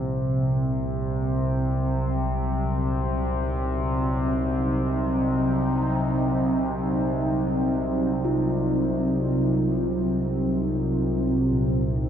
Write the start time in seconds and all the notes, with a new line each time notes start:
Already playing: C2 C3 A#3
0.08 C3
0.42 C4
1.19 F#3
3.12 D#4
8.25 F4
11.51 A#2